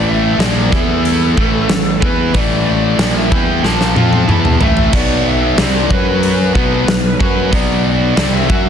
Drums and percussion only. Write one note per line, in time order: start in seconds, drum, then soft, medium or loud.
0.40 snare loud
0.40 open hi-hat medium
0.72 kick loud
0.72 snare soft
1.05 open hi-hat soft
1.37 kick loud
1.69 snare loud
1.69 open hi-hat medium
2.02 kick loud
2.34 kick medium
2.34 open hi-hat soft
2.99 snare loud
2.99 open hi-hat medium
3.32 kick loud
3.64 snare medium
3.81 snare medium
3.96 high tom medium
4.13 high tom medium
4.29 mid tom medium
4.45 mid tom medium
4.61 floor tom medium
4.77 floor tom medium
4.93 kick loud
4.93 open hi-hat soft
4.93 crash medium
5.58 snare loud
5.58 open hi-hat medium
5.90 kick loud
6.23 open hi-hat medium
6.55 kick medium
6.88 snare loud
6.88 open hi-hat soft
7.20 kick loud
7.53 kick loud
7.53 open hi-hat medium
8.17 snare loud
8.17 open hi-hat medium
8.50 kick loud